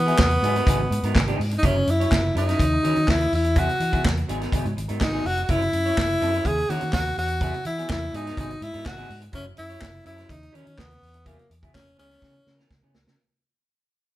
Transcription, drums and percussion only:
0.08 closed hi-hat
0.19 kick, snare, clap
0.31 closed hi-hat
0.44 closed hi-hat
0.56 closed hi-hat
0.67 kick, closed hi-hat
0.92 closed hi-hat
1.03 closed hi-hat
1.15 kick, snare, clap
1.27 closed hi-hat
1.41 open hi-hat
1.51 closed hi-hat
1.63 kick, closed hi-hat
1.87 closed hi-hat
2.01 closed hi-hat
2.12 kick, snare, clap
2.36 closed hi-hat
2.49 snare, closed hi-hat
2.59 kick, closed hi-hat
2.84 closed hi-hat
2.96 closed hi-hat
3.08 kick, snare, clap
3.20 closed hi-hat
3.33 open hi-hat
3.44 closed hi-hat
3.56 kick, closed hi-hat
3.69 closed hi-hat
3.80 closed hi-hat
3.93 kick, closed hi-hat
4.05 kick, snare, clap
4.17 closed hi-hat
4.29 closed hi-hat
4.41 snare, closed hi-hat
4.52 kick, closed hi-hat
4.65 closed hi-hat
4.78 closed hi-hat
4.89 closed hi-hat
5.01 kick, snare, clap
5.26 open hi-hat
5.37 closed hi-hat
5.49 kick, closed hi-hat
5.62 closed hi-hat
5.73 closed hi-hat
5.86 closed hi-hat
5.98 kick, snare, clap
6.22 closed hi-hat
6.34 closed hi-hat
6.45 kick, closed hi-hat
6.58 closed hi-hat
6.70 closed hi-hat
6.81 closed hi-hat
6.93 kick, snare, clap
7.17 open hi-hat
7.28 closed hi-hat
7.41 kick, closed hi-hat
7.54 closed hi-hat
7.65 closed hi-hat
7.79 closed hi-hat
7.90 kick, snare, clap
8.14 closed hi-hat
8.27 snare, closed hi-hat
8.37 kick, closed hi-hat
8.50 closed hi-hat
8.62 closed hi-hat
8.74 closed hi-hat
8.86 kick, snare, clap
8.98 closed hi-hat
9.10 open hi-hat
9.21 closed hi-hat
9.33 kick, closed hi-hat
9.57 closed hi-hat
9.70 closed hi-hat
9.81 kick, snare, clap
10.06 closed hi-hat
10.18 snare, closed hi-hat
10.29 kick, closed hi-hat
10.43 closed hi-hat
10.55 closed hi-hat
10.67 closed hi-hat
10.78 kick, snare, clap
10.91 closed hi-hat
11.03 open hi-hat
11.14 closed hi-hat
11.26 kick, closed hi-hat
11.39 closed hi-hat
11.51 closed hi-hat
11.63 kick, closed hi-hat
11.75 kick, snare, clap
11.87 closed hi-hat
11.99 closed hi-hat
12.11 snare, closed hi-hat
12.22 kick, snare
12.47 snare
12.59 snare
12.71 kick, snare
12.94 snare
13.07 snare

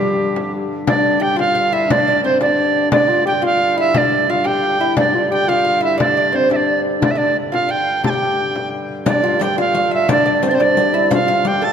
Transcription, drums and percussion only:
0.02 frame drum
0.36 frame drum
0.87 frame drum
1.05 frame drum
1.39 frame drum
1.56 frame drum
1.90 frame drum
2.07 frame drum
2.41 frame drum
2.58 frame drum
2.92 frame drum
3.09 frame drum
3.43 frame drum
3.60 frame drum
3.94 frame drum
4.11 frame drum
4.45 frame drum
4.63 frame drum
4.80 frame drum
4.97 frame drum
5.14 frame drum
5.49 frame drum
5.66 frame drum
6.00 frame drum
6.17 frame drum
6.51 frame drum
6.68 frame drum
7.02 frame drum
7.20 frame drum
7.54 frame drum
7.70 frame drum
8.04 frame drum
8.56 frame drum
8.72 frame drum
8.89 frame drum
9.06 riq, frame drum
9.24 frame drum
9.41 riq
9.58 riq, frame drum
9.74 riq, frame drum
10.09 riq, frame drum
10.26 frame drum
10.43 riq
10.60 riq, frame drum
10.77 riq, frame drum
11.11 riq, frame drum
11.29 frame drum
11.45 riq
11.62 riq, frame drum

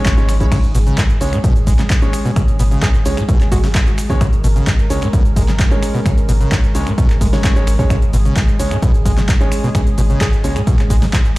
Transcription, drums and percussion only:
0.05 kick, clap, closed hi-hat, shaker
0.17 closed hi-hat, shaker
0.29 finger snap, snare, open hi-hat, shaker
0.40 kick, closed hi-hat, shaker
0.52 finger snap, kick, closed hi-hat, crash, shaker
0.64 closed hi-hat, shaker
0.75 open hi-hat, shaker
0.87 closed hi-hat, shaker
0.98 kick, clap, closed hi-hat, shaker
1.10 closed hi-hat, shaker
1.21 open hi-hat, shaker
1.33 finger snap, closed hi-hat, shaker
1.44 kick, closed hi-hat, shaker
1.56 closed hi-hat, shaker
1.67 kick, open hi-hat, shaker
1.79 snare, clap, closed hi-hat, shaker
1.90 kick, clap, closed hi-hat, shaker
2.02 closed hi-hat, shaker
2.13 finger snap, open hi-hat, shaker
2.25 shaker
2.36 finger snap, kick, closed hi-hat, shaker
2.48 closed hi-hat, shaker
2.59 open hi-hat, shaker
2.71 closed hi-hat, shaker
2.82 kick, clap, closed hi-hat, shaker
2.94 closed hi-hat, shaker
3.06 open hi-hat, shaker
3.17 finger snap, closed hi-hat, shaker
3.29 kick, closed hi-hat, shaker
3.41 clap, closed hi-hat, shaker
3.52 kick, open hi-hat, shaker
3.64 snare, open hi-hat, shaker
3.75 kick, clap, closed hi-hat, shaker
3.87 closed hi-hat, shaker
3.98 finger snap, open hi-hat, shaker
4.10 kick, shaker
4.21 finger snap, kick, closed hi-hat, shaker
4.33 closed hi-hat, shaker
4.44 open hi-hat, shaker
4.56 closed hi-hat, shaker
4.67 kick, clap, closed hi-hat, shaker
4.79 closed hi-hat, shaker
4.90 open hi-hat, shaker
5.02 finger snap, closed hi-hat, shaker
5.13 kick, closed hi-hat, shaker
5.25 closed hi-hat, shaker
5.36 kick, open hi-hat, shaker
5.48 snare, clap, shaker
5.59 kick, clap, closed hi-hat, shaker
5.71 closed hi-hat, shaker
5.83 finger snap, open hi-hat, shaker
5.95 shaker
6.06 finger snap, kick, closed hi-hat, shaker
6.18 closed hi-hat, shaker
6.29 open hi-hat, shaker
6.41 closed hi-hat, shaker
6.52 kick, clap, closed hi-hat, shaker
6.64 closed hi-hat, shaker
6.75 open hi-hat, shaker
6.87 finger snap, closed hi-hat, shaker
6.98 kick, closed hi-hat, shaker
7.10 clap, closed hi-hat, shaker
7.21 kick, open hi-hat, shaker
7.33 snare, open hi-hat, shaker
7.44 kick, clap, closed hi-hat, shaker
7.56 closed hi-hat, shaker
7.67 finger snap, open hi-hat, shaker
7.79 kick, shaker
7.90 finger snap, kick, closed hi-hat, shaker
8.02 closed hi-hat, shaker
8.13 open hi-hat, shaker
8.25 closed hi-hat, shaker
8.36 kick, clap, closed hi-hat, shaker
8.48 closed hi-hat, shaker
8.59 open hi-hat, shaker
8.71 finger snap, closed hi-hat, shaker
8.82 kick, closed hi-hat, shaker
8.94 closed hi-hat, shaker
9.05 kick, open hi-hat, shaker
9.17 snare, clap, closed hi-hat, shaker
9.29 kick, clap, closed hi-hat, shaker
9.41 closed hi-hat, shaker
9.52 finger snap, open hi-hat, shaker
9.64 shaker
9.75 finger snap, kick, closed hi-hat, shaker
9.87 closed hi-hat, shaker
9.98 open hi-hat, shaker
10.10 closed hi-hat, shaker
10.21 kick, clap, closed hi-hat, shaker
10.33 closed hi-hat, shaker
10.44 open hi-hat, shaker
10.56 finger snap, closed hi-hat, shaker
10.67 kick, closed hi-hat, shaker
10.79 clap, closed hi-hat, shaker
10.90 kick, open hi-hat, shaker
11.02 snare, open hi-hat, shaker
11.13 kick, clap, closed hi-hat, shaker
11.25 closed hi-hat, shaker

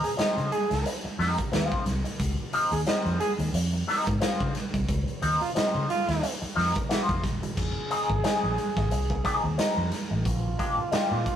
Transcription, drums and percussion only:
0.04 closed hi-hat
0.19 snare, closed hi-hat
0.38 closed hi-hat
0.52 closed hi-hat
0.71 snare, closed hi-hat
0.86 closed hi-hat
1.20 snare, open hi-hat
1.38 kick, closed hi-hat
1.53 snare, closed hi-hat
1.72 kick
1.86 snare, closed hi-hat
2.05 closed hi-hat
2.20 kick, closed hi-hat
2.53 closed hi-hat
2.72 closed hi-hat
2.87 snare, closed hi-hat
3.06 closed hi-hat
3.20 closed hi-hat
3.39 closed hi-hat
3.54 closed hi-hat
3.73 closed hi-hat
3.89 snare, open hi-hat
4.06 kick, closed hi-hat
4.21 snare, closed hi-hat
4.41 kick
4.55 snare, closed hi-hat
4.74 kick, closed hi-hat
4.88 kick, closed hi-hat
5.08 closed hi-hat
5.22 closed hi-hat
5.41 closed hi-hat
5.56 snare, closed hi-hat
5.90 closed hi-hat
6.08 snare, closed hi-hat
6.23 closed hi-hat
6.42 closed hi-hat
6.58 snare, open hi-hat
6.75 kick, closed hi-hat
6.91 snare, closed hi-hat
7.09 kick, closed hi-hat
7.24 kick, snare, closed hi-hat
7.43 closed hi-hat
7.57 kick, crash
7.91 closed hi-hat
8.10 kick
8.24 snare, closed hi-hat
8.58 closed hi-hat
8.77 kick, snare
8.91 closed hi-hat
9.10 kick
9.25 kick, snare, closed hi-hat
9.59 snare, closed hi-hat
9.92 snare, closed hi-hat
10.25 kick, closed hi-hat
10.59 kick, closed hi-hat
10.92 snare, closed hi-hat
11.26 kick, closed hi-hat

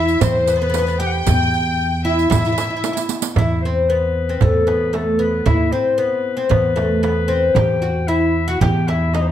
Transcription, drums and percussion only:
0.08 riq
0.21 riq, darbuka dum, frame drum
0.35 darbuka ka
0.47 riq, darbuka tek
0.74 riq, darbuka tek, frame drum
0.88 riq
1.26 riq, darbuka dum, frame drum
1.53 riq, darbuka ka
1.80 darbuka ka
2.19 riq
2.31 riq, frame drum, darbuka dum
2.45 riq, darbuka ka
2.58 riq, darbuka tek, frame drum
2.84 riq, darbuka tek, frame drum
2.97 riq, darbuka ka
3.09 riq, darbuka tek
3.22 riq, darbuka ka
3.36 frame drum, darbuka dum
4.28 darbuka ka
4.41 darbuka dum, frame drum
4.55 darbuka ka
4.68 darbuka tek, frame drum
4.94 darbuka tek, frame drum
5.46 frame drum, darbuka dum
6.00 darbuka ka
6.39 darbuka ka
6.51 frame drum, darbuka dum
6.77 darbuka tek, frame drum
7.04 darbuka tek, frame drum
7.56 darbuka dum, frame drum
8.61 darbuka dum, frame drum
8.74 darbuka ka
8.88 darbuka tek, frame drum
9.14 darbuka tek, frame drum

